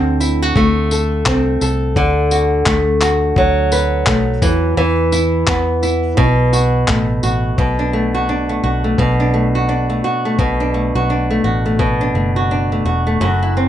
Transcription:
Already playing: fingered electric bass D2, nylon-string guitar D3 A3 C4 F#4
0.20 nylon-string guitar E4, tambourine
0.42 nylon-string guitar F#4
0.56 fingered electric bass D2, nylon-string guitar A3, kick
0.91 nylon-string guitar A4, tambourine
1.26 fingered electric bass C2, nylon-string guitar C4, kick, clap
1.61 fingered electric bass C2, nylon-string guitar A4, tambourine
1.96 fingered electric bass D2, nylon-string guitar D3, kick
2.31 nylon-string guitar F#4, tambourine
2.66 fingered electric bass D2, nylon-string guitar A3, kick, clap
3.01 nylon-string guitar F#4, clap, tambourine
3.36 fingered electric bass D2, nylon-string guitar F#3, kick
3.72 nylon-string guitar B4, tambourine
4.06 fingered electric bass B1, nylon-string guitar A3, kick, clap
4.42 fingered electric bass E2, nylon-string guitar E3, kick, tambourine
4.77 fingered electric bass E2, nylon-string guitar E3
5.12 nylon-string guitar E4, tambourine
5.47 fingered electric bass E2, nylon-string guitar B3, kick, clap
5.83 nylon-string guitar E4, tambourine
6.17 fingered electric bass B1, nylon-string guitar B2, kick
6.53 nylon-string guitar F#4, tambourine
6.88 fingered electric bass A1, nylon-string guitar A3, kick, clap
7.23 fingered electric bass A1, nylon-string guitar F#4, tambourine
7.58 fingered electric bass B1, nylon-string guitar B2, kick
7.79 nylon-string guitar D4
7.93 nylon-string guitar A3
8.14 nylon-string guitar F#4
8.29 nylon-string guitar D4
8.49 nylon-string guitar A3
8.63 fingered electric bass B1, nylon-string guitar F#4
8.84 nylon-string guitar A3
8.98 fingered electric bass B1, nylon-string guitar B2, kick
9.20 nylon-string guitar D4
9.34 nylon-string guitar A3
9.55 nylon-string guitar F#4
9.69 nylon-string guitar D4
9.90 nylon-string guitar A3
10.04 nylon-string guitar F#4
10.25 nylon-string guitar A3
10.39 fingered electric bass B1, nylon-string guitar B2, kick
10.60 nylon-string guitar D4
10.74 nylon-string guitar A3
10.95 fingered electric bass B1, nylon-string guitar F#4
11.10 nylon-string guitar D4
11.30 nylon-string guitar A3
11.44 fingered electric bass A1, nylon-string guitar F#4
11.66 nylon-string guitar A3
11.79 nylon-string guitar B2, kick
12.01 nylon-string guitar D4
12.14 fingered electric bass F#1, nylon-string guitar A3
12.36 nylon-string guitar F#4
12.51 nylon-string guitar D4
12.72 nylon-string guitar A3
12.85 fingered electric bass E1, nylon-string guitar F#4
13.07 nylon-string guitar A3
13.21 fingered electric bass F#1, nylon-string guitar F#2 F#4
13.43 nylon-string guitar E4
13.57 nylon-string guitar C4

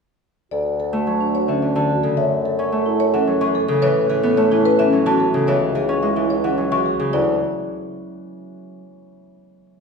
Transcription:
0.51 bassoon D2, french horn F#4, marimba A4 D5
0.80 marimba A4
0.93 harp A3
1.07 harp F#3
1.21 marimba D4
1.35 marimba C#5
1.48 harp D3, marimba C#4 E5
1.62 harp E3
1.75 harp D3, marimba A5
1.90 marimba F#4
2.03 harp C#3, marimba A4
2.17 bassoon F#2, french horn A4, marimba C#5 E5
2.45 marimba A4
2.59 harp C#4
2.72 harp A3
2.86 marimba E4
3.00 marimba C#5
3.14 harp E3, marimba C#4 F#5
3.27 harp F#3
3.41 harp E3, marimba C#6
3.55 marimba A4
3.68 harp C#3, marimba A4
3.82 bassoon A2, harp E3, french horn C#4, marimba B4 C#5
4.10 harp E3, marimba A4
4.23 harp B3
4.37 harp A3, marimba C#5
4.51 harp E3, marimba E4
4.65 marimba B4
4.79 harp E3, marimba C#4 E5
4.92 harp F#3
5.06 harp E3, marimba F#4 A5
5.20 marimba A4
5.34 harp C#3, marimba A4
5.47 bassoon C#2, harp E3, french horn E4, marimba C#5 E5
5.75 harp E3, marimba G#4
5.89 harp C#4
6.03 harp G#3, marimba E5
6.16 harp E3, marimba E4
6.30 marimba C#5
6.44 harp E3, marimba C#4 F#5
6.58 harp F#3
6.71 harp E3, marimba F#4 C#6
6.86 marimba G#4
7.00 harp C#3, marimba G#4
7.13 bassoon D2, harp E3, marimba E4 D5

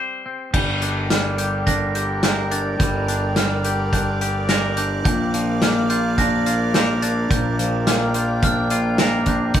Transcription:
Already playing: clean electric guitar G3 C4 G4
0.00 clean electric guitar C5
0.26 clean electric guitar C4
0.54 fingered electric bass G1, clean electric guitar G3, ambient pad A#4 D5 G5 D6, glockenspiel G6, kick, crash
0.82 clean electric guitar D4, closed hi-hat
1.10 clean electric guitar G3, glockenspiel F6, snare, closed hi-hat
1.38 clean electric guitar G4, glockenspiel G6, closed hi-hat
1.67 clean electric guitar D4, glockenspiel A#6, kick, closed hi-hat
1.95 clean electric guitar G4, closed hi-hat
2.23 clean electric guitar A#4, glockenspiel G6, snare, closed hi-hat
2.51 clean electric guitar D4, glockenspiel A6, closed hi-hat
2.79 fingered electric bass G1, clean electric guitar G3, glockenspiel G6, kick, closed hi-hat
3.08 clean electric guitar D4, closed hi-hat
3.36 clean electric guitar G3, glockenspiel F6, snare, closed hi-hat
3.64 clean electric guitar G4, glockenspiel G6, closed hi-hat
3.93 clean electric guitar D4, glockenspiel G6, kick, closed hi-hat
4.21 clean electric guitar G4, closed hi-hat
4.49 clean electric guitar A#4, glockenspiel A#6, snare, closed hi-hat
4.77 clean electric guitar D4, glockenspiel G6, closed hi-hat
5.05 fingered electric bass A#1, clean electric guitar A#2, ambient pad A#4 F5, glockenspiel G6, kick, closed hi-hat
5.34 clean electric guitar F3, closed hi-hat
5.62 clean electric guitar A#3, glockenspiel F6, snare, closed hi-hat
5.90 clean electric guitar F4, glockenspiel G6, closed hi-hat
6.18 clean electric guitar D4, glockenspiel A#6, kick, closed hi-hat
6.46 clean electric guitar F4, closed hi-hat
6.74 clean electric guitar A#4, glockenspiel G6, snare, closed hi-hat
7.02 clean electric guitar D4, glockenspiel A6, closed hi-hat
7.30 fingered electric bass A#1, clean electric guitar A#2, ambient pad G5, glockenspiel G6, kick, closed hi-hat
7.59 clean electric guitar F3, closed hi-hat
7.87 clean electric guitar A#3, glockenspiel F6, snare, closed hi-hat
8.14 clean electric guitar F4, glockenspiel G6, closed hi-hat
8.43 clean electric guitar D4, glockenspiel F6, kick, closed hi-hat
8.70 clean electric guitar F4, closed hi-hat
8.98 clean electric guitar A#4, glockenspiel A#6, snare, closed hi-hat
9.26 clean electric guitar D4, glockenspiel G6, kick, closed hi-hat
9.53 fingered electric bass D#2, clean electric guitar D#3, ambient pad A#4 D#5 G5 D#6, glockenspiel G6, kick, closed hi-hat

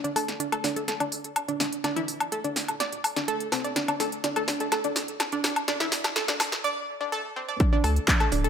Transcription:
0.04 synth arpeggio sound D4, closed hi-hat
0.16 synth arpeggio sound A4, open hi-hat, low woodblock
0.28 snare, closed hi-hat
0.40 synth arpeggio sound D4, closed hi-hat
0.52 synth arpeggio sound A4, closed hi-hat, low woodblock
0.64 synth arpeggio sound D4, snare, open hi-hat
0.76 synth arpeggio sound A4, closed hi-hat
0.88 synth arpeggio sound A4, snare, closed hi-hat
1.00 synth arpeggio sound D4, closed hi-hat, low woodblock
1.12 open hi-hat
1.24 closed hi-hat
1.36 closed hi-hat, low woodblock
1.48 synth arpeggio sound D4, closed hi-hat, mid tom
1.60 synth arpeggio sound D4, snare, open hi-hat, mid tom
1.72 closed hi-hat
1.84 synth arpeggio sound D4, snare, closed hi-hat, low woodblock
1.96 synth arpeggio sound E4, closed hi-hat
2.08 open hi-hat, mid tom
2.20 closed hi-hat, low woodblock
2.32 synth arpeggio sound A4, closed hi-hat
2.44 synth arpeggio sound D4, closed hi-hat
2.56 snare, open hi-hat
2.68 closed hi-hat, mid tom, low woodblock
2.80 synth arpeggio sound D5, snare, closed hi-hat
2.92 closed hi-hat, mid tom
3.04 open hi-hat, low woodblock
3.16 synth arpeggio sound D4, snare, closed hi-hat
3.28 synth arpeggio sound A4, closed hi-hat
3.40 closed hi-hat
3.52 synth arpeggio sound C4, snare, open hi-hat, low woodblock
3.64 synth arpeggio sound D5, closed hi-hat
3.76 synth arpeggio sound D4, snare, closed hi-hat
3.88 synth arpeggio sound D4, closed hi-hat, low woodblock
4.00 synth arpeggio sound A4, snare, open hi-hat
4.12 closed hi-hat
4.24 synth arpeggio sound D4, snare, closed hi-hat
4.36 synth arpeggio sound A4, closed hi-hat, low woodblock
4.48 synth arpeggio sound D4, snare, open hi-hat
4.60 synth arpeggio sound A4, closed hi-hat
4.72 synth arpeggio sound A4, snare, closed hi-hat, low woodblock
4.84 synth arpeggio sound D4, closed hi-hat
4.96 snare, open hi-hat
5.08 closed hi-hat
5.20 snare, closed hi-hat, low woodblock
5.32 synth arpeggio sound D4, closed hi-hat, mid tom
5.44 synth arpeggio sound D4, snare, open hi-hat, mid tom
5.56 closed hi-hat, low woodblock
5.68 synth arpeggio sound D4, snare, closed hi-hat
5.80 synth arpeggio sound E4, snare, closed hi-hat
5.92 snare, open hi-hat, mid tom
6.04 snare, closed hi-hat, low woodblock
6.16 synth arpeggio sound A4, snare, closed hi-hat
6.28 synth arpeggio sound D4, snare, closed hi-hat
6.40 snare, open hi-hat, low woodblock
6.52 snare, closed hi-hat, mid tom
6.64 synth arpeggio sound D5
7.01 synth arpeggio sound D4
7.12 synth arpeggio sound A4
7.36 synth arpeggio sound C4
7.49 synth arpeggio sound D5
7.60 synth arpeggio sound D4, kick, closed hi-hat
7.73 synth arpeggio sound D4
7.84 analog synth bass D2, synth arpeggio sound A4, open hi-hat, low woodblock
7.96 closed hi-hat
8.08 synth arpeggio sound D4, kick, clap, closed hi-hat
8.20 synth arpeggio sound A4, closed hi-hat, low woodblock
8.32 analog synth bass D1, synth arpeggio sound D4, open hi-hat
8.44 synth arpeggio sound A4, closed hi-hat

